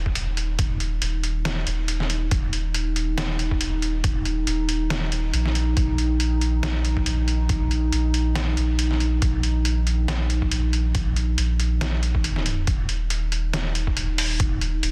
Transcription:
0.00 0.14 D#1 loud
0.00 12.66 D#4 medium
0.06 kick medium
0.15 1.00 D#1 loud
0.15 closed hi-hat medium
0.37 closed hi-hat medium
0.59 kick loud
0.59 closed hi-hat medium
0.80 closed hi-hat medium
1.02 1.65 D#1 loud
1.02 closed hi-hat medium
1.24 closed hi-hat medium
1.45 snare loud
1.45 closed hi-hat medium
1.67 2.30 D#1 medium
1.67 closed hi-hat medium
1.88 closed hi-hat medium
2.00 snare soft
2.10 closed hi-hat medium
2.31 3.59 D#1 loud
2.31 kick loud
2.31 closed hi-hat medium
2.53 closed hi-hat medium
2.74 closed hi-hat medium
2.96 closed hi-hat medium
3.18 snare loud
3.18 closed hi-hat medium
3.39 closed hi-hat medium
3.51 kick medium
3.61 4.46 D#1 loud
3.61 closed hi-hat medium
3.82 closed hi-hat medium
4.04 kick loud
4.04 closed hi-hat medium
4.25 closed hi-hat soft
4.47 5.32 D#1 loud
4.47 closed hi-hat medium
4.69 closed hi-hat medium
4.90 snare loud
4.90 closed hi-hat medium
5.12 closed hi-hat soft
5.33 5.75 A#1 loud
5.33 closed hi-hat medium
5.46 snare soft
5.55 closed hi-hat medium
5.77 7.05 A#1 loud
5.77 kick loud
5.77 closed hi-hat medium
5.98 closed hi-hat soft
6.20 closed hi-hat medium
6.41 closed hi-hat soft
6.63 snare loud
6.63 closed hi-hat medium
6.85 closed hi-hat soft
6.97 kick medium
7.06 7.91 A#1 loud
7.06 closed hi-hat medium
7.28 closed hi-hat soft
7.49 kick loud
7.49 closed hi-hat medium
7.71 closed hi-hat soft
7.92 8.56 A#1 loud
7.92 closed hi-hat medium
8.14 closed hi-hat medium
8.36 snare loud
8.36 closed hi-hat medium
8.57 9.20 A#1 loud
8.57 closed hi-hat medium
8.79 closed hi-hat medium
8.91 snare soft
9.00 closed hi-hat soft
9.22 10.50 A#1 medium
9.22 kick loud
9.22 closed hi-hat medium
9.43 closed hi-hat soft
9.65 closed hi-hat medium
9.87 closed hi-hat medium
10.08 snare loud
10.08 closed hi-hat medium
10.30 closed hi-hat soft
10.42 kick medium
10.51 11.36 A#1 loud
10.51 closed hi-hat medium
10.73 closed hi-hat medium
10.95 kick loud
10.95 closed hi-hat medium
11.16 closed hi-hat medium
11.38 12.66 A#1 loud
11.38 closed hi-hat medium
11.60 closed hi-hat medium
11.81 snare loud
11.81 closed hi-hat medium
12.03 closed hi-hat medium
12.15 kick medium
12.24 closed hi-hat medium
12.36 snare soft
12.46 closed hi-hat medium
12.67 13.95 D#1 loud
12.67 14.91 D#4 medium
12.67 kick loud
12.67 closed hi-hat medium
12.89 closed hi-hat medium
13.10 closed hi-hat medium
13.32 closed hi-hat medium
13.53 snare loud
13.53 closed hi-hat medium
13.75 closed hi-hat medium
13.87 kick medium
13.97 14.82 D#1 loud
13.97 closed hi-hat medium
14.18 open hi-hat medium
14.40 kick loud
14.40 closed hi-hat medium
14.61 closed hi-hat medium
14.83 14.91 D#1 loud
14.83 closed hi-hat medium

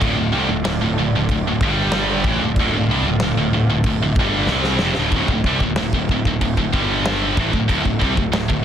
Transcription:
0.00 0.17 D1 loud
0.00 0.16 D2 loud
0.00 0.16 A2 loud
0.00 5.08 D3 medium
0.00 1.58 A3 medium
0.00 1.58 F4 medium
0.00 5.08 D5 medium
0.00 kick medium
0.00 crash medium
0.17 0.32 D1 medium
0.17 0.32 D2 medium
0.17 0.33 A2 medium
0.32 0.48 C2 loud
0.32 0.48 C3 loud
0.32 0.49 G3 loud
0.49 0.64 D1 medium
0.49 0.64 D2 medium
0.49 0.64 A2 medium
0.65 0.80 D1 medium
0.65 0.81 D2 medium
0.65 0.81 A2 medium
0.65 snare loud
0.65 crash medium
0.82 0.97 D1 medium
0.82 0.98 D2 medium
0.82 0.98 A2 medium
0.97 1.12 D1 medium
0.97 1.14 D2 medium
0.97 1.15 A2 medium
1.14 1.28 D1 medium
1.14 1.30 D2 medium
1.14 1.31 A2 medium
1.29 1.44 D1 medium
1.29 1.46 D2 medium
1.29 1.47 A2 medium
1.29 kick loud
1.29 crash medium
1.45 1.60 D1 medium
1.45 1.62 D2 medium
1.45 1.64 A2 medium
1.60 2.21 G1 loud
1.60 2.25 G2 loud
1.60 2.25 D3 loud
1.60 2.25 G3 medium
1.60 2.25 G4 medium
1.60 kick loud
1.65 2.26 G3 loud
1.92 snare loud
1.92 crash medium
2.24 2.39 A1 medium
2.24 2.41 A2 loud
2.24 2.41 E3 loud
2.24 5.10 A3 medium
2.24 5.10 F4 medium
2.24 kick loud
2.40 2.55 D1 medium
2.40 2.58 D2 medium
2.40 2.59 A2 medium
2.56 2.71 D1 loud
2.56 2.73 D2 loud
2.56 kick loud
2.56 crash medium
2.61 2.74 A2 loud
2.72 2.87 D1 medium
2.76 2.90 D2 medium
2.76 2.91 A2 medium
2.87 3.02 C2 loud
2.87 3.05 C3 medium
2.91 3.05 G3 loud
3.03 3.18 D1 medium
3.07 3.22 D2 medium
3.07 3.21 A2 medium
3.19 3.34 D1 medium
3.19 snare loud
3.19 crash medium
3.23 3.36 D2 medium
3.23 3.37 A2 medium
3.34 3.49 D1 medium
3.34 3.52 D2 medium
3.39 3.52 A2 medium
3.50 3.65 D1 medium
3.50 3.69 D2 medium
3.50 3.69 A2 medium
3.66 3.82 D1 medium
3.70 3.85 D2 medium
3.70 3.85 A2 medium
3.84 3.97 D1 medium
3.84 4.01 D2 medium
3.84 4.02 A2 medium
3.84 kick loud
3.84 crash medium
3.98 4.14 D1 medium
4.03 4.18 D2 medium
4.03 4.18 A2 medium
4.16 4.46 G1 medium
4.16 4.49 G2 medium
4.16 4.50 D3 loud
4.16 kick loud
4.20 4.50 G3 loud
4.47 4.78 C2 medium
4.47 4.81 C3 loud
4.47 snare medium
4.51 4.81 G3 loud
4.51 4.82 C4 loud
4.64 snare medium
4.79 4.96 F1 medium
4.79 snare medium
4.83 4.97 F2 medium
4.83 4.97 C3 loud
4.95 5.11 D1 medium
4.95 snare medium
4.99 5.13 D2 loud
4.99 5.13 A2 loud
5.11 5.27 D1 loud
5.11 kick loud
5.11 crash medium
5.16 5.30 D2 loud
5.16 5.29 A2 loud
5.28 5.43 D1 medium
5.28 5.46 D2 medium
5.28 kick loud
5.33 5.47 A2 medium
5.44 5.59 C2 loud
5.44 5.61 C3 medium
5.44 kick medium
5.48 5.62 G3 loud
5.60 5.76 D1 medium
5.60 5.76 D2 medium
5.60 5.77 A2 medium
5.60 kick loud
5.76 5.92 D1 medium
5.76 5.93 D2 medium
5.76 5.93 A2 medium
5.76 snare loud
5.76 crash medium
5.92 6.08 D1 medium
5.92 6.10 D2 medium
5.92 6.10 A2 medium
5.92 kick medium
6.09 6.24 D1 medium
6.09 6.26 D2 medium
6.09 6.25 A2 medium
6.09 kick medium
6.25 6.40 D1 medium
6.25 6.40 D2 medium
6.25 6.41 A2 medium
6.25 kick medium
6.41 6.56 D1 medium
6.41 6.56 D2 medium
6.41 6.57 A2 medium
6.41 kick loud
6.41 crash medium
6.57 6.73 D1 medium
6.57 6.72 D2 medium
6.57 6.72 A2 medium
6.57 kick medium
6.72 7.34 G1 loud
6.72 7.36 G2 loud
6.72 7.36 D3 loud
6.72 7.37 G3 loud
6.72 kick loud
7.05 snare loud
7.05 crash medium
7.37 7.52 A1 loud
7.37 7.52 A2 loud
7.37 7.53 E3 loud
7.37 kick loud
7.53 7.68 D1 medium
7.53 7.67 D2 medium
7.53 7.67 A2 medium
7.53 kick medium
7.68 7.84 D1 loud
7.68 7.83 D2 loud
7.68 7.83 A2 loud
7.68 kick loud
7.68 crash medium
7.84 8.00 D1 medium
7.84 7.99 D2 medium
7.84 8.00 A2 medium
7.84 kick medium
8.00 8.16 C2 loud
8.00 8.14 C3 medium
8.00 8.15 G3 loud
8.00 kick medium
8.15 8.31 D1 medium
8.15 8.31 D2 medium
8.15 8.31 A2 medium
8.15 kick loud
8.31 8.47 D1 medium
8.31 8.47 D2 medium
8.31 8.47 A2 medium
8.31 snare loud
8.31 crash medium
8.48 8.64 D1 medium
8.48 8.61 D2 medium
8.48 8.62 A2 medium
8.48 kick loud

